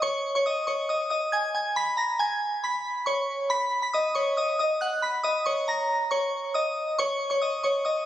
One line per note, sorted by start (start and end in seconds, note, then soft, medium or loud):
0.02 0.33 C#5 medium
0.02 0.33 C#6 loud
0.35 0.44 C#5 medium
0.35 0.44 C#6 medium
0.46 0.63 D#5 medium
0.46 0.63 D#6 medium
0.67 0.85 C#5 medium
0.67 0.84 C#6 medium
0.89 1.07 D#5 medium
0.89 1.06 D#6 medium
1.10 1.28 D#5 medium
1.10 1.28 D#6 medium
1.32 1.50 G#5 medium
1.32 1.50 G#6 medium
1.55 1.72 G#5 medium
1.55 1.72 G#6 medium
1.76 1.93 B5 loud
1.76 1.94 B6 medium
1.97 2.15 A#5 medium
1.97 2.15 A#6 medium
2.19 2.60 G#5 medium
2.19 2.61 G#6 medium
2.64 3.04 B5 medium
2.64 3.05 B6 medium
3.06 3.48 C#5 medium
3.06 3.47 C#6 medium
3.50 3.81 B5 loud
3.50 3.81 B6 medium
3.82 3.91 B5 medium
3.82 3.91 B6 medium
3.93 4.11 D#5 medium
3.93 4.11 D#6 medium
4.15 4.33 C#5 medium
4.15 4.32 C#6 medium
4.37 4.55 D#5 medium
4.37 4.54 D#6 medium
4.59 4.77 D#5 medium
4.59 4.76 D#6 medium
4.81 4.98 F#5 medium
4.81 4.98 F#6 medium
5.02 5.19 B5 medium
5.02 5.20 B6 medium
5.24 5.41 D#5 medium
5.24 5.41 D#6 medium
5.46 5.63 C#5 medium
5.46 5.63 C#6 medium
5.68 6.08 A#5 medium
5.68 6.09 A#6 medium
6.11 6.52 C#5 medium
6.11 6.52 C#6 medium
6.54 6.96 D#5 medium
6.54 6.95 D#6 medium
6.99 7.29 C#5 medium
6.99 7.29 C#6 loud
7.30 7.39 C#5 medium
7.30 7.39 C#6 medium
7.42 7.59 D#5 medium
7.42 7.59 D#6 medium
7.63 7.81 C#5 medium
7.63 7.80 C#6 medium
7.85 8.02 D#5 medium
7.85 8.02 D#6 medium